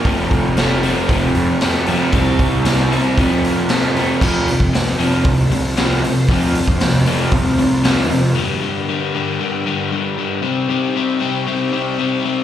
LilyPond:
<<
  \new Staff \with { instrumentName = "String machine" } { \time 4/4 \key f \mixolydian \tempo 4 = 116 r1 | r1 | <a f' c''>1~ | <a f' c''>1 |
<d' bes' g''>1 | <ees' c'' g''>1 | }
  \new Staff \with { instrumentName = "Overdriven electric guitar" } { \clef bass \time 4/4 \key f \mixolydian <f, c f>4 <f, c f>8 <f, c f>8 <f, c f>4 <f, c f>8 <f, c f>8 | <c g c'>4 <c g c'>8 <c g c'>8 <f, c f>4 <f, c f>8 <f, c f>8 | <f, c f>8 <f, c>8 <f, c>8 <f, c f>8 <f, c>8 <f, c>8 <f, c f>8 <f, c>8 | <f, c f>8 <f, c>8 <f, c>8 <f, c f>8 <f, c>8 <f, c>8 <f, c f>8 <f, c>8 |
<g, d g>8 <g, d g>8 <g, d g>8 <g, d g>8 <g, d g>8 <g, d g>8 <g, d g>8 <g, d g>8 | <c g c'>8 <c g c'>8 <c g c'>8 <c g c'>8 <c g c'>8 <c g c'>8 <c g c'>8 <c g c'>8 | }
  \new Staff \with { instrumentName = "Overdriven electric guitar" } { \clef bass \time 4/4 \key f \mixolydian <f, c f a c'>4 <f, c f a c'>8 <f, c f a c'>8 <f, c f a c'>4 <f, c f a c'>8 <f, c f a c'>8 | <c g c' e'>4 <c g c' e'>8 <c g c' e'>8 <f, c f a c'>4 <f, c f a c'>8 <f, c f a c'>8 | <f, c f>8 <f, c>8 <f, c>8 <f, c f>8 <f, c>8 <f, c>8 <f, c f>8 <f, c>8 | <f, c f>8 <f, c>8 <f, c>8 <f, c f>8 <f, c>8 <f, c>8 <f, c f>8 <f, c>8 |
r1 | r1 | }
  \new Staff \with { instrumentName = "Picked electric bass" } { \clef bass \time 4/4 \key f \mixolydian f,,8 f,,4. f,,8 f,8 r8 f,8 | c,8 c,4. f,2 | f,8. f,4~ f,16 c,2 | f,8. f,4~ f,16 c,4. f,8 |
r1 | r1 | }
  \new DrumStaff \with { instrumentName = "Drums" } \drummode { \time 4/4 <hho bd>8 <hho bd>8 <hho sn>8 hho8 <hho bd>8 hho8 <hho sn>8 hho8 | <hho bd>8 <hho bd>8 <hho sn>8 hho8 <hho bd>8 hho8 <hho sn>8 hho8 | <cymc bd>8 hho16 bd16 <hho sn>8 hho8 <hho bd>8 hho8 <hho sn>8 hho8 | <hho bd>8 hho16 bd16 <hho sn>8 hho8 <hho bd>8 hho8 <hho sn>8 hho8 |
r4 r4 r4 r4 | r4 r4 r4 r4 | }
>>